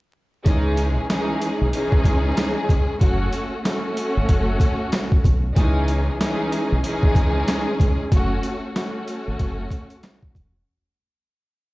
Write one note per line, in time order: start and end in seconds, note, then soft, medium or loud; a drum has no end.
0.44 0.98 C#2 loud
0.44 1.05 E3 medium
0.44 1.05 G#3 medium
0.44 1.05 C#4 medium
0.44 1.05 D#4 medium
0.44 1.05 G#4 loud
0.44 kick loud
0.44 closed hi-hat medium
0.77 closed hi-hat medium
1.10 1.70 E3 loud
1.10 1.70 G#3 medium
1.10 1.70 C#4 medium
1.10 1.70 D#4 medium
1.10 1.70 G#4 loud
1.10 snare loud
1.10 closed hi-hat medium
1.42 closed hi-hat medium
1.61 1.71 B1 medium
1.73 2.93 E3 loud
1.73 2.93 G#3 medium
1.73 2.93 C#4 loud
1.73 2.93 D#4 medium
1.73 2.93 G#4 loud
1.73 closed hi-hat medium
1.92 kick loud
2.04 2.31 C#2 loud
2.04 kick medium
2.04 closed hi-hat medium
2.37 snare loud
2.37 closed hi-hat loud
2.69 2.85 C#2 medium
2.69 kick medium
2.69 closed hi-hat medium
3.00 3.27 F#1 loud
3.00 3.60 A3 medium
3.00 3.61 C#4 medium
3.00 3.61 F#4 loud
3.00 kick loud
3.00 closed hi-hat medium
3.33 closed hi-hat medium
3.63 5.43 A3 loud
3.63 5.44 C#4 medium
3.63 5.44 F#4 loud
3.63 snare loud
3.63 closed hi-hat medium
3.97 closed hi-hat medium
4.17 4.27 G#1 medium
4.29 4.55 F#1 loud
4.29 kick medium
4.29 closed hi-hat medium
4.60 kick medium
4.60 closed hi-hat medium
4.92 snare loud
4.92 closed hi-hat loud
5.12 kick loud
5.24 5.51 B1 medium
5.24 kick loud
5.24 closed hi-hat medium
5.55 6.08 C#2 loud
5.55 6.16 E3 loud
5.55 6.16 G#3 medium
5.55 6.16 C#4 medium
5.55 6.16 D#4 medium
5.55 6.16 G#4 loud
5.55 kick loud
5.55 closed hi-hat medium
5.88 closed hi-hat medium
6.21 6.80 E3 loud
6.21 6.80 G#3 medium
6.21 6.81 C#4 medium
6.21 6.81 D#4 medium
6.21 6.81 G#4 loud
6.21 snare loud
6.21 closed hi-hat medium
6.52 closed hi-hat medium
6.72 6.82 B1 medium
6.83 8.03 E3 loud
6.83 8.03 G#3 loud
6.83 8.04 C#4 loud
6.83 8.04 D#4 loud
6.83 8.04 G#4 loud
6.83 closed hi-hat medium
7.03 kick loud
7.15 7.42 C#2 loud
7.15 kick medium
7.15 closed hi-hat medium
7.48 snare loud
7.48 closed hi-hat loud
7.80 7.96 C#2 medium
7.80 kick medium
7.80 closed hi-hat medium
8.11 8.38 F#1 loud
8.11 8.71 A3 medium
8.11 8.71 C#4 medium
8.11 8.72 F#4 loud
8.11 kick loud
8.11 closed hi-hat medium
8.43 closed hi-hat medium
8.74 10.54 A3 loud
8.74 10.54 C#4 medium
8.74 10.55 F#4 loud
8.74 snare loud
8.74 closed hi-hat medium
9.08 closed hi-hat medium
9.27 9.37 G#1 medium
9.39 9.66 F#1 medium
9.39 kick loud
9.39 closed hi-hat medium
9.70 kick medium
9.70 closed hi-hat medium
9.90 closed hi-hat medium
10.03 snare loud
10.03 closed hi-hat loud
10.23 kick medium
10.35 10.61 E1 medium
10.35 kick medium
10.35 closed hi-hat medium